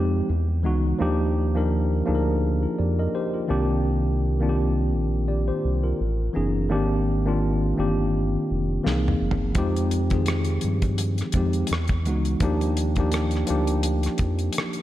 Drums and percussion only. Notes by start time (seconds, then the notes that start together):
8.87 snare
9.08 mid tom
9.31 floor tom
9.55 kick, closed hi-hat
9.76 closed hi-hat
9.91 closed hi-hat
10.10 kick, closed hi-hat
10.26 cross-stick, closed hi-hat
10.44 closed hi-hat
10.61 closed hi-hat
10.82 kick, closed hi-hat
10.98 closed hi-hat
11.18 cross-stick, closed hi-hat
11.32 kick, closed hi-hat
11.53 closed hi-hat
11.67 closed hi-hat
11.73 cross-stick
11.88 kick, closed hi-hat
12.06 closed hi-hat
12.25 closed hi-hat
12.40 kick, closed hi-hat
12.61 closed hi-hat
12.77 closed hi-hat
12.96 kick, closed hi-hat
13.12 cross-stick, closed hi-hat
13.31 closed hi-hat
13.36 cross-stick
13.47 closed hi-hat
13.67 closed hi-hat
13.83 closed hi-hat
14.03 cross-stick, closed hi-hat
14.18 kick, closed hi-hat
14.39 closed hi-hat
14.53 closed hi-hat
14.58 cross-stick
14.73 closed hi-hat